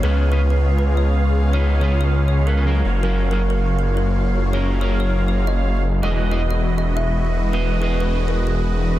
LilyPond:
<<
  \new Staff \with { instrumentName = "Kalimba" } { \time 4/4 \key fis \major \tempo 4 = 160 b'8 r16 b'16 r16 b'8 r16 b'16 r16 cis''8 r4 | cis''8 r16 cis''16 r16 cis''8 r16 cis''16 r16 ais'8 r4 | ais'8 r16 ais'16 r16 ais'8 r16 ais'16 r16 ais'8 r4 | cis''8 r16 cis''16 r16 cis''8 r16 cis''16 r16 dis''8 r4 |
dis''8 r16 dis''16 r16 dis''8 r16 dis''16 r16 e''8 r4 | b'8 r16 b'16 r16 b'8 r16 ais'16 r16 gis'8 r4 | }
  \new Staff \with { instrumentName = "Analog polysynth" } { \time 4/4 \key fis \major <b eis' gis' cis'' eis''>1~ | <b eis' gis' cis'' eis''>2.~ <b eis' gis' cis'' eis''>8 <ais eis' fis' cis'' eis''>8~ | <ais eis' fis' cis'' eis''>1~ | <ais eis' fis' cis'' eis''>2.~ <ais eis' fis' cis'' eis''>8 r8 |
<gis e' fis' b' dis''>1~ | <gis e' fis' b' dis''>1 | }
  \new Staff \with { instrumentName = "Clean electric guitar" } { \time 4/4 \key fis \major <cis cis' dis' eis' b'>8. <cis cis' dis' eis' b'>16 r2. | <cis cis' dis' eis' b'>8. <cis cis' dis' eis' b'>4.~ <cis cis' dis' eis' b'>16 <cis cis' dis' eis' b'>16 <cis cis' dis' eis' b'>16 <fis cis' eis' gis' ais'>4 | <fis cis' eis' gis' ais'>8. <fis cis' eis' gis' ais'>16 r2. | <fis cis' eis' gis' ais'>8. <fis cis' gis' ais' eis''>2.~ <fis cis' gis' ais' eis''>16 |
<e b fis' gis' dis''>8. <e b fis' gis' dis''>16 r2. | <e b fis' gis' dis''>8. <e b fis' gis' dis''>2.~ <e b fis' gis' dis''>16 | }
  \new Staff \with { instrumentName = "Analog synth pad" } { \time 4/4 \key fis \major << { <cis eis''>1~ | <cis eis''>1~ | <cis eis''>1~ | <cis eis''>1 |
<e fis'>1~ | <e fis'>1 | } \\ { <gis b>1~ | <gis b>2.~ <gis b>8 <fis ais>8~ | <fis ais>1~ | <fis ais>1 |
<gis dis''>1~ | <gis dis''>1 | } >> }
  \new Staff \with { instrumentName = "Detuned saw bass" } { \clef bass \time 4/4 \key fis \major cis,1~ | cis,2.~ cis,8 fis,,8~ | fis,,1~ | fis,,1 |
e,,1~ | e,,1 | }
>>